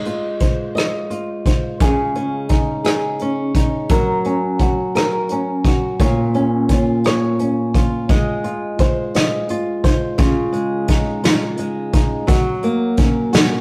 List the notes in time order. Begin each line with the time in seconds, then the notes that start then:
Already playing: G#3 D#5
0.05 F4, closed hi-hat
0.40 C5, kick, closed hi-hat
0.75 D#5, cross-stick, closed hi-hat
1.10 F4, closed hi-hat
1.46 C5, kick, closed hi-hat
1.80 C#3 G#4, kick, closed hi-hat
2.15 C#4, closed hi-hat
2.49 D#4, kick, cross-stick, closed hi-hat
2.84 G#4, cross-stick, closed hi-hat
3.19 C#4, closed hi-hat
3.55 D#4, kick, closed hi-hat
3.89 F#3 A#4, kick, closed hi-hat
4.24 C#4, closed hi-hat
4.59 F#4, kick, closed hi-hat
4.95 A#4, cross-stick, closed hi-hat
5.29 C#4, closed hi-hat
5.65 F#4, kick, closed hi-hat
6.00 A#2 C#5, kick, closed hi-hat
6.34 C#4, closed hi-hat
6.69 F4, kick, cross-stick, closed hi-hat
7.04 C#5, cross-stick, closed hi-hat
7.39 C#4, closed hi-hat
7.74 F4, kick, closed hi-hat
8.09 G#3 D#5, kick, closed hi-hat
8.44 F4, closed hi-hat
8.79 C5, kick, closed hi-hat
9.14 D#5, snare, closed hi-hat
9.49 F4, closed hi-hat
9.84 C5, kick, closed hi-hat
10.18 C#3 F4, kick, closed hi-hat
10.53 G#3, closed hi-hat
10.88 D#4, kick, snare, closed hi-hat
11.23 F4, snare, closed hi-hat
11.57 G#3, closed hi-hat
11.93 D#4, kick, closed hi-hat
12.27 F#3 F#4, kick, closed hi-hat
12.63 A#3, closed hi-hat
12.97 C#4, kick, closed hi-hat
13.33 F#4, snare, closed hi-hat